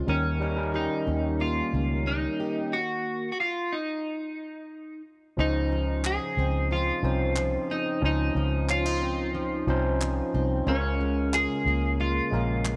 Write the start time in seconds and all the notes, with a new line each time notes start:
Already playing: G#3 C4 F4
0.07 D#2 D#3 G3 C#4 D#4 A#4
0.40 G3 C#4 D#4 A#4
0.56 G3 C#4 D#4 A#4
0.74 D#4 G4
1.07 D#2 C#4
1.40 A#3 F4
1.73 C#2 C#4
2.07 A#3 D#4
2.40 G4
2.73 F#4
3.32 F#4
3.40 F4
3.72 D#4
5.37 C#2 C#3 F3 C#4 D#4 C5
5.72 F3
6.04 D#4 G#4, clap
6.37 C#2 C4
6.71 F3 F4
7.03 C2 F3 C4 C#4 D#4 C5
7.36 F3, clap
7.71 C4 D#4
8.01 C#2 F3 C#4 D#4 C5
8.05 D#4
8.35 C#2 F3
8.69 C#4 F4, clap
8.86 D#4
9.02 C4
9.35 F3
9.67 C2 F3 C4 C#4 D#4 C5
10.01 F3, clap
10.34 C2 C4
10.66 C#2 C#3 G#3 C#4 F4 A#4
11.01 G#3
11.34 F4 G#4, clap
11.65 C#2 A#3
12.00 G#3 F4
12.31 A#1 G#3 A#3 C#4 F4 A#4
12.65 G#3, clap